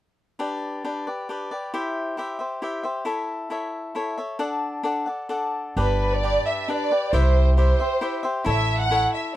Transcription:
0.39 cavaquinho D4 G4 B4 D5
0.84 cavaquinho D4 G4 B4 D5
1.07 cavaquinho G4 B4 D5
1.29 cavaquinho D4 G4 B4 D5
1.51 cavaquinho G4 B4 D5
1.74 cavaquinho E4 G4 C5 E5
2.17 cavaquinho E4 G4 C5 E5
2.39 cavaquinho G4 C5 E5
2.62 cavaquinho E4 G4 C5 E5
2.83 cavaquinho G4 C5 E5
3.05 cavaquinho E4 A4 C#5 E5
3.50 cavaquinho E4 A4 C#5 E5
3.95 cavaquinho E4 A4 C#5 E5
4.18 cavaquinho A4 C#5 E5
4.39 cavaquinho D4 A4 D5 F#5
4.83 cavaquinho D4 A4 D5 F#5
5.06 cavaquinho A4 D5 F#5
5.29 cavaquinho D4 A4 D5 F#5
5.76 upright bass G1, cavaquinho D4 G4 B4 D5, violin section B4
6.14 violin section D5
6.23 cavaquinho D4 G4 B4 D5
6.47 violin section E5
6.68 cavaquinho D4 G4 B4 D5, violin section D5
6.90 cavaquinho G4 B4 D5
7.13 upright bass C2, cavaquinho E4 G4 C5 E5, violin section C5
7.56 cavaquinho E4 G4 C5 E5, violin section C5
7.80 cavaquinho G4 C5 E5
8.01 cavaquinho E4 G4 C5 E5
8.23 cavaquinho G4 C5 E5
8.45 upright bass A1, cavaquinho E4 A4 C#5 E5, violin section E5
8.81 violin section F#5
8.91 cavaquinho E4 A4 C#5 E5
9.14 violin section E5

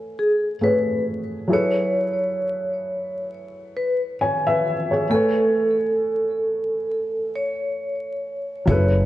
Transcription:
Already playing: upright piano A3 B4 C#5 G#5
0.19 vibraphone G#4
0.61 upright piano A3 G#4 B4 C#5, vibraphone B4
1.48 upright piano F#3 E4 G#4
1.52 upright piano A4 B4, vibraphone C#5
3.77 vibraphone B4
4.21 upright piano C#5 G#5
4.47 upright piano B4 E5
4.91 upright piano G#4 C#5
5.09 upright piano A3 B4 G#5, vibraphone A4
5.15 upright piano C#5
7.36 vibraphone C#5
8.65 upright bass F#1, upright piano F#3 E4 G#4, vibraphone C#5, cajon bass
8.70 upright piano A4 B4
8.95 cajon slap

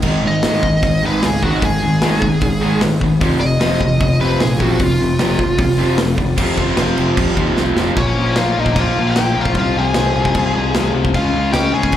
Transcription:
0.02 picked electric bass G#1, overdriven electric guitar G#2 D#3 G#3, kick, crash
0.22 picked electric bass G#1, overdriven electric guitar G#2 D#3
0.27 lead electric guitar D#5
0.42 picked electric bass G#1, overdriven electric guitar G#2 D#3 G#3, snare, open hi-hat
0.62 picked electric bass G#1, overdriven electric guitar G#2 D#3, kick
0.82 picked electric bass G#1, overdriven electric guitar G#2 D#3, kick, open hi-hat
1.02 picked electric bass G#1, overdriven electric guitar G#2 D#3 G#3
1.06 lead electric guitar B4
1.23 picked electric bass C#2, overdriven electric guitar G#2 D#3, lead electric guitar G#4, snare, open hi-hat
1.43 overdriven electric guitar G#2 D#3 G#3, lead electric guitar F#4, kick
1.62 picked electric bass G#1, overdriven electric guitar G#2 D#3, lead electric guitar G#4, kick, open hi-hat
1.82 picked electric bass G#1, overdriven electric guitar G#2 D#3
2.02 picked electric bass G#1, overdriven electric guitar G#2 D#3 G#3, snare, open hi-hat
2.22 overdriven electric guitar G#2 D#3, kick
2.41 picked electric bass G#1, overdriven electric guitar G#2 D#3, kick, open hi-hat
2.61 overdriven electric guitar G#2 D#3 G#3
2.81 picked electric bass G#1, overdriven electric guitar G#2 D#3, snare, open hi-hat
3.01 picked electric bass G#1, overdriven electric guitar G#2 D#3, kick
3.20 picked electric bass F1, overdriven electric guitar F2 C3 F3, kick, open hi-hat
3.39 picked electric bass F1, overdriven electric guitar F2 C3, lead electric guitar D#5
3.60 picked electric bass F1, overdriven electric guitar F2 C3 F3, snare, open hi-hat
3.80 picked electric bass F1, overdriven electric guitar F2 C3, kick
4.01 picked electric bass F1, overdriven electric guitar F2 C3, kick, open hi-hat
4.20 picked electric bass F1, overdriven electric guitar F2 C3 F3, lead electric guitar B4
4.40 picked electric bass A#1, overdriven electric guitar F2 C3, lead electric guitar G#4, snare, open hi-hat
4.59 overdriven electric guitar F2 C3 F3, lead electric guitar F#4, kick
4.79 picked electric bass F1, overdriven electric guitar F2 C3, lead electric guitar F4, kick, open hi-hat
5.00 picked electric bass F1, overdriven electric guitar F2 C3
5.19 picked electric bass F1, overdriven electric guitar F2 C3 F3, snare, open hi-hat
5.39 overdriven electric guitar F2 C3, kick
5.58 picked electric bass F1, overdriven electric guitar F2 C3, kick, open hi-hat
5.78 overdriven electric guitar F2 C3 F3
5.98 picked electric bass F1, overdriven electric guitar F2 C3, snare, open hi-hat
6.18 picked electric bass F1, overdriven electric guitar F2 C3, kick
6.37 picked electric bass F1, overdriven electric guitar F2 C3 F3, kick, crash
6.57 picked electric bass F1, overdriven electric guitar F2 C3 F3, kick, crash
6.76 picked electric bass F1, overdriven electric guitar F2 C3 F3, snare, crash
6.97 picked electric bass F1, overdriven electric guitar F2 C3 F3, crash
7.17 picked electric bass F2, overdriven electric guitar F2 C3 F3, kick, crash
7.37 picked electric bass D#2, overdriven electric guitar F2 C3 F3, kick, crash
7.56 picked electric bass C2, overdriven electric guitar F2 C3 F3, snare
7.76 picked electric bass F1, overdriven electric guitar F2 C3 F3, snare
7.97 picked electric bass A#1, overdriven electric guitar A#2 F3 A#3, lead electric guitar C#4 C#5, kick, crash
8.16 picked electric bass A#1, overdriven electric guitar A#2 F3 A#3
8.36 picked electric bass A#1, overdriven electric guitar A#2 F3 A#3, lead electric guitar F4, snare, crash
8.40 lead electric guitar F5
8.57 picked electric bass A#1, overdriven electric guitar A#2 F3 A#3, lead electric guitar D#4 D#5
8.66 kick
8.76 picked electric bass A#1, overdriven electric guitar A#2 F3 A#3, lead electric guitar F4, kick, crash
8.81 lead electric guitar F5
8.96 picked electric bass A#1, overdriven electric guitar A#2 F3 A#3
9.10 lead electric guitar G4 G5
9.16 picked electric bass A#1, overdriven electric guitar A#2 F3 A#3, snare, crash
9.35 picked electric bass A#1, overdriven electric guitar A#2 F3 A#3
9.41 lead electric guitar F4 F5
9.45 kick
9.54 picked electric bass C2, overdriven electric guitar F2 C3 F3, lead electric guitar F4, kick, crash
9.60 lead electric guitar F5
9.75 picked electric bass C2, overdriven electric guitar F2 C3 F3, lead electric guitar G#4
9.80 lead electric guitar G#5
9.94 picked electric bass C2, overdriven electric guitar F2 C3 F3, snare, crash
10.15 picked electric bass C2, overdriven electric guitar F2 C3 F3
10.25 kick
10.35 picked electric bass C2, overdriven electric guitar F2 C3 F3, kick, crash
10.55 picked electric bass C2, overdriven electric guitar F2 C3 F3
10.75 picked electric bass C2, overdriven electric guitar F2 C3 F3, snare, crash
10.94 picked electric bass C2, overdriven electric guitar F2 C3 F3
11.05 kick
11.14 picked electric bass C#2, overdriven electric guitar C#3 G#3 C#4, lead electric guitar F4 F5, kick, crash
11.33 picked electric bass C#2, overdriven electric guitar C#3 G#3 C#4
11.52 picked electric bass C#2, overdriven electric guitar C#3 G#3 C#4, lead electric guitar G4 G5, snare, crash
11.72 picked electric bass C#2, overdriven electric guitar C#3 G#3 C#4, lead electric guitar G#4 G#5
11.83 kick
11.92 picked electric bass C#2, overdriven electric guitar C#3 G#3 C#4, kick, crash

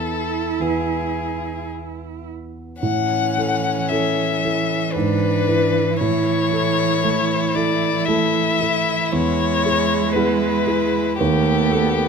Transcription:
Already playing: grand piano E2 B3 E4 B4, cello E4, violin A4
0.60 grand piano E2 B3 E4 B4, violin G#4
2.80 grand piano A2, cello E3, violin C#4 F#5
3.37 grand piano E4 A4
3.89 grand piano C#4 E4 A4, violin E5
4.44 grand piano E4 A4
4.92 grand piano G#2, violin D4 B4
5.48 grand piano E4 B4
5.96 violin E4 C#5
6.01 grand piano A2
6.52 grand piano E4 A4
7.04 grand piano A3 E4 A4
7.55 grand piano E4 A4, violin D5
8.05 grand piano A3 E4 A4, violin E5
8.61 grand piano E4 A4
9.11 grand piano E2, cello G#3, violin C#5
9.65 grand piano E4 G#4
10.13 grand piano B3 E4 G#4, violin B4
10.67 grand piano E4 G#4
11.17 grand piano D#2, cello A3, violin B3 G4
11.71 grand piano F#4 A4

